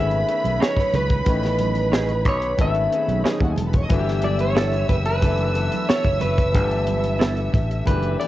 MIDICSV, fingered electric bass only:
0, 0, Header, 1, 3, 480
1, 0, Start_track
1, 0, Tempo, 660066
1, 918, Time_signature, 4, 2, 24, 8
1, 6018, End_track
2, 0, Start_track
2, 0, Title_t, "Fingered electric bass"
2, 0, Program_c, 0, 33
2, 0, Note_on_c, 0, 32, 96
2, 160, Note_off_c, 0, 32, 0
2, 324, Note_on_c, 0, 35, 90
2, 421, Note_off_c, 0, 35, 0
2, 679, Note_on_c, 0, 37, 93
2, 877, Note_off_c, 0, 37, 0
2, 922, Note_on_c, 0, 33, 106
2, 1639, Note_off_c, 0, 33, 0
2, 1639, Note_on_c, 0, 35, 85
2, 1837, Note_off_c, 0, 35, 0
2, 1881, Note_on_c, 0, 32, 101
2, 2078, Note_off_c, 0, 32, 0
2, 2241, Note_on_c, 0, 35, 89
2, 2339, Note_off_c, 0, 35, 0
2, 2477, Note_on_c, 0, 39, 95
2, 2577, Note_off_c, 0, 39, 0
2, 2599, Note_on_c, 0, 28, 98
2, 2797, Note_off_c, 0, 28, 0
2, 2839, Note_on_c, 0, 31, 114
2, 3530, Note_off_c, 0, 31, 0
2, 3558, Note_on_c, 0, 30, 87
2, 4129, Note_off_c, 0, 30, 0
2, 4398, Note_on_c, 0, 30, 87
2, 4497, Note_off_c, 0, 30, 0
2, 4528, Note_on_c, 0, 30, 92
2, 4759, Note_off_c, 0, 30, 0
2, 4759, Note_on_c, 0, 31, 112
2, 5450, Note_off_c, 0, 31, 0
2, 5481, Note_on_c, 0, 33, 83
2, 5679, Note_off_c, 0, 33, 0
2, 5726, Note_on_c, 0, 30, 104
2, 5922, Note_off_c, 0, 30, 0
2, 6018, End_track
3, 0, Start_track
3, 0, Title_t, "Muted fingered electric bass strokes"
3, 558, Note_on_c, 9, 29, 47
3, 631, Note_off_c, 9, 29, 0
3, 6018, End_track
0, 0, End_of_file